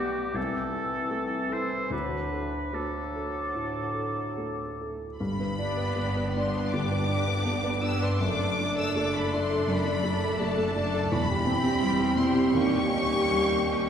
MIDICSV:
0, 0, Header, 1, 12, 480
1, 0, Start_track
1, 0, Key_signature, 1, "major"
1, 0, Tempo, 773196
1, 1192, Tempo, 817439
1, 1193, Time_signature, 4, 2, 24, 8
1, 3112, Tempo, 766284
1, 4072, Tempo, 749064
1, 5512, Tempo, 714286
1, 7912, Tempo, 754717
1, 8772, End_track
2, 0, Start_track
2, 0, Title_t, "Flute"
2, 0, Program_c, 0, 73
2, 0, Note_on_c, 0, 86, 50
2, 225, Note_on_c, 0, 88, 45
2, 234, Note_off_c, 0, 86, 0
2, 1184, Note_off_c, 0, 88, 0
2, 1188, Note_on_c, 0, 86, 36
2, 1494, Note_off_c, 0, 86, 0
2, 1665, Note_on_c, 0, 86, 42
2, 2886, Note_off_c, 0, 86, 0
2, 8772, End_track
3, 0, Start_track
3, 0, Title_t, "Violin section"
3, 0, Program_c, 1, 48
3, 3109, Note_on_c, 1, 83, 69
3, 3808, Note_off_c, 1, 83, 0
3, 3838, Note_on_c, 1, 84, 60
3, 4062, Note_on_c, 1, 86, 74
3, 4074, Note_off_c, 1, 84, 0
3, 4783, Note_off_c, 1, 86, 0
3, 4787, Note_on_c, 1, 88, 75
3, 4911, Note_off_c, 1, 88, 0
3, 4915, Note_on_c, 1, 84, 67
3, 5026, Note_on_c, 1, 86, 79
3, 5037, Note_off_c, 1, 84, 0
3, 5392, Note_off_c, 1, 86, 0
3, 5393, Note_on_c, 1, 88, 77
3, 5508, Note_off_c, 1, 88, 0
3, 5515, Note_on_c, 1, 86, 74
3, 5631, Note_off_c, 1, 86, 0
3, 5637, Note_on_c, 1, 83, 73
3, 5755, Note_off_c, 1, 83, 0
3, 5761, Note_on_c, 1, 84, 71
3, 5998, Note_off_c, 1, 84, 0
3, 6000, Note_on_c, 1, 83, 83
3, 6484, Note_off_c, 1, 83, 0
3, 6491, Note_on_c, 1, 81, 76
3, 6961, Note_on_c, 1, 83, 90
3, 6964, Note_off_c, 1, 81, 0
3, 7658, Note_off_c, 1, 83, 0
3, 7673, Note_on_c, 1, 84, 68
3, 7911, Note_on_c, 1, 85, 92
3, 7914, Note_off_c, 1, 84, 0
3, 8772, Note_off_c, 1, 85, 0
3, 8772, End_track
4, 0, Start_track
4, 0, Title_t, "Violin section"
4, 0, Program_c, 2, 48
4, 3358, Note_on_c, 2, 74, 44
4, 3364, Note_on_c, 2, 67, 43
4, 3828, Note_off_c, 2, 67, 0
4, 3828, Note_off_c, 2, 74, 0
4, 3836, Note_on_c, 2, 67, 44
4, 3838, Note_on_c, 2, 74, 43
4, 4300, Note_off_c, 2, 67, 0
4, 4302, Note_off_c, 2, 74, 0
4, 4309, Note_on_c, 2, 74, 43
4, 4310, Note_on_c, 2, 67, 48
4, 4778, Note_off_c, 2, 74, 0
4, 4779, Note_off_c, 2, 67, 0
4, 4789, Note_on_c, 2, 74, 44
4, 4793, Note_on_c, 2, 67, 44
4, 5031, Note_off_c, 2, 74, 0
4, 5033, Note_off_c, 2, 67, 0
4, 5041, Note_on_c, 2, 74, 41
4, 5045, Note_on_c, 2, 69, 41
4, 5276, Note_off_c, 2, 74, 0
4, 5278, Note_off_c, 2, 69, 0
4, 5285, Note_on_c, 2, 74, 48
4, 5289, Note_on_c, 2, 69, 52
4, 5745, Note_off_c, 2, 69, 0
4, 5747, Note_off_c, 2, 74, 0
4, 5753, Note_on_c, 2, 69, 47
4, 5754, Note_on_c, 2, 74, 49
4, 6224, Note_off_c, 2, 69, 0
4, 6228, Note_off_c, 2, 74, 0
4, 6232, Note_on_c, 2, 69, 49
4, 6234, Note_on_c, 2, 74, 49
4, 6709, Note_off_c, 2, 69, 0
4, 6710, Note_off_c, 2, 74, 0
4, 6720, Note_on_c, 2, 74, 52
4, 6721, Note_on_c, 2, 69, 55
4, 6954, Note_off_c, 2, 74, 0
4, 6955, Note_off_c, 2, 69, 0
4, 7185, Note_on_c, 2, 67, 57
4, 7189, Note_on_c, 2, 79, 54
4, 7655, Note_off_c, 2, 67, 0
4, 7657, Note_off_c, 2, 79, 0
4, 7674, Note_on_c, 2, 79, 48
4, 7675, Note_on_c, 2, 67, 49
4, 7905, Note_off_c, 2, 67, 0
4, 7908, Note_off_c, 2, 79, 0
4, 7913, Note_on_c, 2, 67, 48
4, 7916, Note_on_c, 2, 79, 50
4, 8134, Note_off_c, 2, 67, 0
4, 8136, Note_off_c, 2, 79, 0
4, 8141, Note_on_c, 2, 67, 52
4, 8143, Note_on_c, 2, 79, 50
4, 8614, Note_off_c, 2, 67, 0
4, 8615, Note_off_c, 2, 79, 0
4, 8626, Note_on_c, 2, 79, 42
4, 8630, Note_on_c, 2, 67, 45
4, 8772, Note_off_c, 2, 67, 0
4, 8772, Note_off_c, 2, 79, 0
4, 8772, End_track
5, 0, Start_track
5, 0, Title_t, "Oboe"
5, 0, Program_c, 3, 68
5, 0, Note_on_c, 3, 67, 49
5, 223, Note_on_c, 3, 69, 57
5, 232, Note_off_c, 3, 67, 0
5, 947, Note_on_c, 3, 72, 47
5, 957, Note_off_c, 3, 69, 0
5, 1185, Note_off_c, 3, 72, 0
5, 1189, Note_on_c, 3, 71, 54
5, 1675, Note_on_c, 3, 69, 41
5, 1684, Note_off_c, 3, 71, 0
5, 2875, Note_off_c, 3, 69, 0
5, 8772, End_track
6, 0, Start_track
6, 0, Title_t, "Grand piano"
6, 0, Program_c, 4, 0
6, 0, Control_c, 4, 64, 127
6, 0, Note_on_c, 4, 35, 49
6, 0, Note_on_c, 4, 59, 36
6, 0, Note_on_c, 4, 67, 40
6, 125, Note_off_c, 4, 59, 0
6, 198, Note_off_c, 4, 35, 0
6, 210, Note_on_c, 4, 36, 42
6, 221, Note_off_c, 4, 67, 0
6, 237, Control_c, 4, 64, 0
6, 325, Control_c, 4, 64, 127
6, 448, Note_on_c, 4, 69, 32
6, 680, Note_on_c, 4, 57, 33
6, 841, Note_off_c, 4, 69, 0
6, 930, Note_on_c, 4, 69, 33
6, 1082, Note_off_c, 4, 57, 0
6, 1160, Note_off_c, 4, 36, 0
6, 1179, Note_on_c, 4, 38, 37
6, 1185, Note_off_c, 4, 69, 0
6, 1204, Control_c, 4, 64, 0
6, 1325, Control_c, 4, 64, 127
6, 1426, Note_on_c, 4, 69, 34
6, 1667, Note_on_c, 4, 57, 31
6, 1814, Note_off_c, 4, 69, 0
6, 1918, Note_on_c, 4, 69, 34
6, 2052, Note_off_c, 4, 57, 0
6, 2118, Note_off_c, 4, 38, 0
6, 2149, Note_on_c, 4, 45, 28
6, 2291, Note_off_c, 4, 69, 0
6, 2378, Note_on_c, 4, 69, 32
6, 2526, Note_off_c, 4, 45, 0
6, 2630, Note_on_c, 4, 57, 30
6, 2770, Note_off_c, 4, 69, 0
6, 2889, Note_on_c, 4, 69, 30
6, 3024, Note_off_c, 4, 57, 0
6, 3121, Note_on_c, 4, 43, 53
6, 3122, Note_off_c, 4, 69, 0
6, 3125, Control_c, 4, 64, 0
6, 3234, Control_c, 4, 64, 127
6, 3245, Note_on_c, 4, 71, 43
6, 3360, Note_on_c, 4, 62, 48
6, 3431, Note_off_c, 4, 71, 0
6, 3478, Note_on_c, 4, 71, 45
6, 3549, Note_off_c, 4, 62, 0
6, 3595, Note_on_c, 4, 59, 44
6, 3669, Note_off_c, 4, 71, 0
6, 3724, Note_on_c, 4, 71, 43
6, 3788, Note_off_c, 4, 59, 0
6, 3848, Note_on_c, 4, 62, 46
6, 3912, Note_off_c, 4, 71, 0
6, 3964, Note_on_c, 4, 71, 42
6, 4032, Note_off_c, 4, 62, 0
6, 4051, Note_off_c, 4, 43, 0
6, 4081, Note_on_c, 4, 50, 42
6, 4149, Note_off_c, 4, 71, 0
6, 4197, Note_on_c, 4, 71, 46
6, 4267, Note_off_c, 4, 50, 0
6, 4306, Note_on_c, 4, 62, 43
6, 4383, Note_off_c, 4, 71, 0
6, 4428, Note_on_c, 4, 71, 45
6, 4497, Note_off_c, 4, 62, 0
6, 4538, Note_on_c, 4, 59, 45
6, 4618, Note_off_c, 4, 71, 0
6, 4658, Note_on_c, 4, 71, 50
6, 4735, Note_off_c, 4, 59, 0
6, 4772, Note_on_c, 4, 62, 45
6, 4858, Note_off_c, 4, 71, 0
6, 4904, Note_on_c, 4, 71, 49
6, 4978, Note_off_c, 4, 62, 0
6, 5022, Note_on_c, 4, 42, 59
6, 5032, Note_off_c, 4, 71, 0
6, 5048, Control_c, 4, 64, 0
6, 5151, Note_on_c, 4, 69, 46
6, 5165, Control_c, 4, 64, 127
6, 5277, Note_on_c, 4, 62, 48
6, 5346, Note_off_c, 4, 69, 0
6, 5389, Note_on_c, 4, 69, 48
6, 5465, Note_off_c, 4, 62, 0
6, 5503, Note_on_c, 4, 57, 48
6, 5581, Note_off_c, 4, 69, 0
6, 5630, Note_on_c, 4, 69, 49
6, 5700, Note_off_c, 4, 57, 0
6, 5757, Note_on_c, 4, 62, 52
6, 5824, Note_off_c, 4, 69, 0
6, 5869, Note_on_c, 4, 69, 54
6, 5947, Note_off_c, 4, 62, 0
6, 5960, Note_off_c, 4, 42, 0
6, 5990, Note_on_c, 4, 42, 55
6, 6064, Note_off_c, 4, 69, 0
6, 6105, Note_on_c, 4, 62, 54
6, 6230, Note_on_c, 4, 57, 51
6, 6305, Note_off_c, 4, 62, 0
6, 6354, Note_on_c, 4, 69, 55
6, 6429, Note_off_c, 4, 57, 0
6, 6473, Note_on_c, 4, 57, 56
6, 6551, Note_off_c, 4, 69, 0
6, 6592, Note_on_c, 4, 69, 62
6, 6669, Note_off_c, 4, 57, 0
6, 6712, Note_on_c, 4, 62, 49
6, 6788, Note_off_c, 4, 69, 0
6, 6837, Note_on_c, 4, 69, 61
6, 6907, Note_off_c, 4, 62, 0
6, 6930, Note_off_c, 4, 42, 0
6, 6957, Note_off_c, 4, 69, 0
6, 6957, Note_on_c, 4, 40, 62
6, 6972, Control_c, 4, 64, 0
6, 7073, Control_c, 4, 64, 127
6, 7075, Note_on_c, 4, 67, 52
6, 7184, Note_on_c, 4, 60, 55
6, 7266, Note_off_c, 4, 67, 0
6, 7306, Note_on_c, 4, 67, 55
6, 7380, Note_off_c, 4, 60, 0
6, 7428, Note_on_c, 4, 55, 55
6, 7499, Note_off_c, 4, 67, 0
6, 7543, Note_on_c, 4, 67, 52
6, 7620, Note_off_c, 4, 55, 0
6, 7663, Note_on_c, 4, 60, 53
6, 7739, Note_off_c, 4, 67, 0
6, 7780, Note_on_c, 4, 67, 55
6, 7860, Note_off_c, 4, 60, 0
6, 7885, Note_off_c, 4, 40, 0
6, 7908, Note_off_c, 4, 67, 0
6, 7909, Note_on_c, 4, 39, 58
6, 7925, Control_c, 4, 64, 0
6, 8022, Control_c, 4, 64, 127
6, 8034, Note_on_c, 4, 67, 51
6, 8154, Note_on_c, 4, 63, 48
6, 8220, Note_off_c, 4, 67, 0
6, 8278, Note_on_c, 4, 67, 50
6, 8339, Note_off_c, 4, 63, 0
6, 8401, Note_on_c, 4, 55, 45
6, 8462, Note_off_c, 4, 67, 0
6, 8514, Note_on_c, 4, 67, 51
6, 8586, Note_off_c, 4, 55, 0
6, 8633, Note_on_c, 4, 63, 43
6, 8707, Note_off_c, 4, 67, 0
6, 8772, Note_off_c, 4, 39, 0
6, 8772, Note_off_c, 4, 63, 0
6, 8772, End_track
7, 0, Start_track
7, 0, Title_t, "Clarinet"
7, 0, Program_c, 5, 71
7, 0, Note_on_c, 5, 59, 41
7, 224, Note_on_c, 5, 60, 47
7, 234, Note_off_c, 5, 59, 0
7, 950, Note_on_c, 5, 64, 38
7, 959, Note_off_c, 5, 60, 0
7, 1191, Note_on_c, 5, 62, 46
7, 1200, Note_off_c, 5, 64, 0
7, 1663, Note_off_c, 5, 62, 0
7, 1667, Note_on_c, 5, 62, 35
7, 2847, Note_off_c, 5, 62, 0
7, 8772, End_track
8, 0, Start_track
8, 0, Title_t, "Viola section"
8, 0, Program_c, 6, 48
8, 3358, Note_on_c, 6, 59, 44
8, 3359, Note_on_c, 6, 62, 45
8, 3826, Note_off_c, 6, 59, 0
8, 3828, Note_off_c, 6, 62, 0
8, 3833, Note_on_c, 6, 59, 44
8, 3835, Note_on_c, 6, 62, 39
8, 4299, Note_off_c, 6, 59, 0
8, 4300, Note_off_c, 6, 62, 0
8, 4317, Note_on_c, 6, 62, 42
8, 4319, Note_on_c, 6, 59, 41
8, 4782, Note_off_c, 6, 62, 0
8, 4784, Note_off_c, 6, 59, 0
8, 4797, Note_on_c, 6, 59, 45
8, 4800, Note_on_c, 6, 62, 45
8, 5033, Note_off_c, 6, 62, 0
8, 5035, Note_off_c, 6, 59, 0
8, 5041, Note_on_c, 6, 62, 51
8, 5044, Note_on_c, 6, 57, 49
8, 5270, Note_off_c, 6, 62, 0
8, 5271, Note_off_c, 6, 57, 0
8, 5278, Note_on_c, 6, 57, 43
8, 5278, Note_on_c, 6, 62, 48
8, 5743, Note_off_c, 6, 57, 0
8, 5743, Note_off_c, 6, 62, 0
8, 5753, Note_on_c, 6, 57, 45
8, 5754, Note_on_c, 6, 62, 47
8, 6227, Note_off_c, 6, 57, 0
8, 6228, Note_off_c, 6, 62, 0
8, 6240, Note_on_c, 6, 57, 52
8, 6242, Note_on_c, 6, 62, 50
8, 6713, Note_off_c, 6, 57, 0
8, 6714, Note_off_c, 6, 62, 0
8, 6729, Note_on_c, 6, 57, 46
8, 6730, Note_on_c, 6, 62, 49
8, 6958, Note_off_c, 6, 57, 0
8, 6959, Note_off_c, 6, 62, 0
8, 7206, Note_on_c, 6, 64, 51
8, 7207, Note_on_c, 6, 60, 58
8, 7666, Note_off_c, 6, 60, 0
8, 7666, Note_off_c, 6, 64, 0
8, 7674, Note_on_c, 6, 64, 50
8, 7677, Note_on_c, 6, 60, 50
8, 7910, Note_off_c, 6, 64, 0
8, 7912, Note_off_c, 6, 60, 0
8, 7915, Note_on_c, 6, 61, 47
8, 7916, Note_on_c, 6, 67, 49
8, 8143, Note_off_c, 6, 61, 0
8, 8144, Note_off_c, 6, 67, 0
8, 8150, Note_on_c, 6, 67, 48
8, 8154, Note_on_c, 6, 61, 49
8, 8619, Note_off_c, 6, 67, 0
8, 8621, Note_off_c, 6, 61, 0
8, 8632, Note_on_c, 6, 67, 41
8, 8634, Note_on_c, 6, 61, 45
8, 8772, Note_off_c, 6, 61, 0
8, 8772, Note_off_c, 6, 67, 0
8, 8772, End_track
9, 0, Start_track
9, 0, Title_t, "French horn section"
9, 0, Program_c, 7, 60
9, 3115, Note_on_c, 7, 62, 56
9, 3119, Note_on_c, 7, 55, 52
9, 5012, Note_off_c, 7, 55, 0
9, 5042, Note_on_c, 7, 57, 57
9, 6935, Note_off_c, 7, 57, 0
9, 6965, Note_on_c, 7, 55, 65
9, 7407, Note_off_c, 7, 62, 0
9, 7444, Note_on_c, 7, 60, 56
9, 7813, Note_off_c, 7, 60, 0
9, 7926, Note_on_c, 7, 61, 62
9, 8772, Note_off_c, 7, 55, 0
9, 8772, Note_off_c, 7, 61, 0
9, 8772, End_track
10, 0, Start_track
10, 0, Title_t, "Bassoon"
10, 0, Program_c, 8, 70
10, 0, Note_on_c, 8, 55, 48
10, 225, Note_on_c, 8, 52, 43
10, 234, Note_off_c, 8, 55, 0
10, 1193, Note_off_c, 8, 52, 0
10, 1195, Note_on_c, 8, 54, 34
10, 1497, Note_off_c, 8, 54, 0
10, 1668, Note_on_c, 8, 54, 35
10, 2888, Note_off_c, 8, 54, 0
10, 8772, End_track
11, 0, Start_track
11, 0, Title_t, "Cello section"
11, 0, Program_c, 10, 48
11, 3118, Note_on_c, 10, 43, 59
11, 3539, Note_off_c, 10, 43, 0
11, 3600, Note_on_c, 10, 43, 59
11, 4020, Note_off_c, 10, 43, 0
11, 4077, Note_on_c, 10, 43, 55
11, 4492, Note_off_c, 10, 43, 0
11, 4552, Note_on_c, 10, 43, 59
11, 4980, Note_off_c, 10, 43, 0
11, 5036, Note_on_c, 10, 42, 52
11, 5458, Note_off_c, 10, 42, 0
11, 5510, Note_on_c, 10, 42, 67
11, 5935, Note_off_c, 10, 42, 0
11, 5992, Note_on_c, 10, 42, 65
11, 6422, Note_off_c, 10, 42, 0
11, 6479, Note_on_c, 10, 42, 69
11, 6902, Note_off_c, 10, 42, 0
11, 6960, Note_on_c, 10, 40, 68
11, 7378, Note_off_c, 10, 40, 0
11, 7433, Note_on_c, 10, 40, 70
11, 7856, Note_off_c, 10, 40, 0
11, 7911, Note_on_c, 10, 39, 60
11, 8326, Note_off_c, 10, 39, 0
11, 8388, Note_on_c, 10, 39, 54
11, 8772, Note_off_c, 10, 39, 0
11, 8772, End_track
12, 0, Start_track
12, 0, Title_t, "Double bass section"
12, 0, Program_c, 11, 48
12, 3115, Note_on_c, 11, 31, 53
12, 3538, Note_off_c, 11, 31, 0
12, 3596, Note_on_c, 11, 31, 52
12, 4018, Note_off_c, 11, 31, 0
12, 4077, Note_on_c, 11, 31, 52
12, 4492, Note_off_c, 11, 31, 0
12, 4548, Note_on_c, 11, 31, 53
12, 4978, Note_off_c, 11, 31, 0
12, 5037, Note_on_c, 11, 30, 58
12, 5458, Note_off_c, 11, 30, 0
12, 5514, Note_on_c, 11, 30, 57
12, 5937, Note_off_c, 11, 30, 0
12, 5989, Note_on_c, 11, 30, 65
12, 6421, Note_off_c, 11, 30, 0
12, 6477, Note_on_c, 11, 30, 59
12, 6901, Note_off_c, 11, 30, 0
12, 6955, Note_on_c, 11, 28, 66
12, 7376, Note_off_c, 11, 28, 0
12, 7433, Note_on_c, 11, 28, 65
12, 7856, Note_off_c, 11, 28, 0
12, 7918, Note_on_c, 11, 39, 65
12, 8330, Note_off_c, 11, 39, 0
12, 8389, Note_on_c, 11, 39, 53
12, 8772, Note_off_c, 11, 39, 0
12, 8772, End_track
0, 0, End_of_file